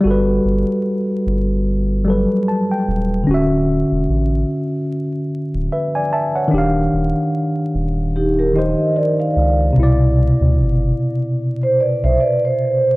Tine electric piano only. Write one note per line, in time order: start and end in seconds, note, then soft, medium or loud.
0.01 2.01 G3 medium
0.01 2.03 F#4 medium
0.07 2.04 A4 medium
0.07 2.06 B4 medium
2.05 3.28 F#3 medium
2.05 3.27 G3 medium
2.05 3.29 A4 medium
2.10 3.30 B4 medium
2.48 2.69 A5 medium
2.71 3.25 G5 medium
3.24 6.46 D3 medium
3.24 6.48 C#4 medium
3.31 6.50 F#4 medium
3.31 5.71 E5 medium
5.72 5.94 B4 soft
5.72 5.94 E5 medium
5.95 6.12 D5 medium
5.95 6.12 G#5 medium
6.13 6.35 E5 medium
6.13 6.34 A5 medium
6.36 6.74 C#5 medium
6.36 6.74 F#5 medium
6.48 8.49 D#3 medium
6.48 8.51 D4 medium
6.54 8.52 G4 medium
6.54 8.54 F5 medium
8.53 9.76 D#3 medium
8.53 9.77 D#4 medium
8.53 9.77 G4 medium
8.58 9.79 C5 medium
9.73 12.96 B2 medium
9.73 12.95 C3 medium
9.79 12.96 E4 medium
9.79 12.96 D5 medium